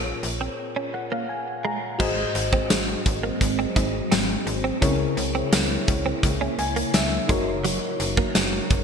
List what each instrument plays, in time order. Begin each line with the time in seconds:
Already playing: fm bass A#1, fm electric piano A#2 F4 G#4 A#4 C#5
0.23 fm bass A#1, muted clean electric guitar stroke, closed hi-hat
0.41 clean electric guitar C4
0.76 clean electric guitar C#4
0.94 fm electric piano F#5, muted clean electric guitar stroke
1.12 clean electric guitar A#3, fm electric piano F5
1.29 fm electric piano G#5
1.64 clean electric guitar G#3, fm electric piano A#5
1.99 fm bass G#1, fm electric piano G#2 F#4 G#4 C5 D#5, ambient pad F#3 G#3 C4, clean electric guitar G#3, kick, crash
2.35 fm bass G#1, muted clean electric guitar stroke, closed hi-hat
2.53 clean electric guitar C4, kick
2.70 fm bass G#1, clean electric guitar G#3, snare, closed hi-hat, tambourine
2.88 muted clean electric guitar stroke
3.06 fm bass G#1, kick, closed hi-hat
3.23 clean electric guitar A#3
3.41 fm bass G#1, muted clean electric guitar stroke, kick, closed hi-hat
3.59 clean electric guitar C4
3.76 fm bass G#1, clean electric guitar D#4, kick, closed hi-hat
4.12 fm bass G#1, clean electric guitar C4, snare, closed hi-hat, tambourine
4.47 fm bass G#1, muted clean electric guitar stroke, closed hi-hat
4.64 clean electric guitar C4
4.81 fm bass C#2, fm electric piano C#3 E4 G#4 A#4 C#5, ambient pad C#3 A#3 E4, clean electric guitar C#4, kick, closed hi-hat
5.17 fm bass C#2, muted clean electric guitar stroke, closed hi-hat
5.35 clean electric guitar C4
5.52 fm bass C#2, clean electric guitar A#3, snare, closed hi-hat, tambourine
5.88 fm bass C#2, muted clean electric guitar stroke, kick, closed hi-hat
6.06 clean electric guitar C4
6.23 fm bass C#2, kick, closed hi-hat
6.41 clean electric guitar C#4
6.58 fm bass C#2, fm electric piano G#5, muted clean electric guitar stroke, closed hi-hat
6.76 clean electric guitar A#3, closed hi-hat
6.94 fm bass C#2, fm electric piano E5, snare, closed hi-hat, tambourine
7.28 fm bass F#1, ambient pad F#3 D#4 A#4, clean electric guitar G#3, fm electric piano D#4 F#4 A#4 C#5, kick, closed hi-hat
7.64 clean electric guitar F#3, closed hi-hat
8.00 fm bass F#1, muted clean electric guitar stroke, closed hi-hat
8.17 clean electric guitar A#3, kick
8.35 fm bass F#1, clean electric guitar G#3, snare, closed hi-hat, tambourine
8.53 muted clean electric guitar stroke
8.70 fm bass F#1, kick, closed hi-hat